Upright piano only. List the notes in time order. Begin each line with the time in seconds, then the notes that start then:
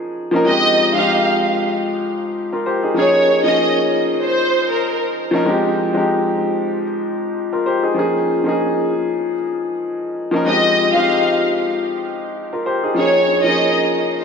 Already playing: F3 A#3 C#4 D#4 G#4
0.31 F3 A#3 C#4 D#4
0.36 A#4
0.45 F3 G#3 C4 D#4
0.50 G4
0.94 F3 G#3 C4 D#4
0.98 G4
2.53 F4 A#4
2.66 G4 C5
2.83 D#4 G#4
2.94 F3 A#3 C#4 D#4
2.99 G#4
3.44 F3 A#3 C#4 D#4
3.49 G#4
5.31 F3 A#3 C#4 D#4
5.36 A#4
5.45 F3 G#3 C4 D#4
5.50 G4
5.94 F3 G#3 C4 D#4
5.98 G4
7.53 F4 A#4
7.66 G4 C5
7.83 D#4 G#4
7.94 F3 A#3 C#4 D#4
7.99 G#4
8.44 F3 A#3 C#4 D#4
8.49 G#4
10.31 F3 A#3 C#4 D#4
10.36 A#4
10.45 F3 G#3 C4 D#4
10.50 G4
10.94 F3 G#3 C4 D#4
10.98 G4
12.53 F4 A#4
12.66 G4 C5
12.83 D#4 G#4
12.94 F3 A#3 C#4 D#4
12.99 G#4
13.44 F3 A#3 C#4 D#4
13.49 G#4